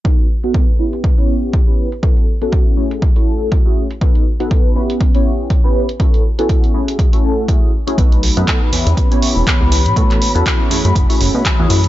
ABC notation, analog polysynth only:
X:1
M:4/4
L:1/16
Q:"Swing 16ths" 1/4=121
K:Bmix
V:1 name="Analog polysynth"
[B,DFAB]2 z [B,DFAB]3 [B,CE=GB]3 [B,CEGc]4 [B,CEGB]2 z | [B,CEFA]2 z [B,CEFA]3 [A,CEFG]3 [A,CEFA]4 [A,CEFG]2 z | [B,DFAB]2 z [B,DFAB]3 [B,CE=GB]3 [B,CEGc]4 [B,CEGB]2 z | [B,CEFA]2 z [B,CEFA]3 [A,CEFG]3 [A,CEFA]3 [A,CEFG]2 z [A,CEFG] |
[B,DFAB]2 z [B,DFAB]3 [B,CE=GB]3 [B,CEGc]4 [B,CEGB]2 z | [B,CEFA]2 z [B,CEFA]3 [A,CEFG]3 [A,CEF]4 [A,CEFG]2 z |]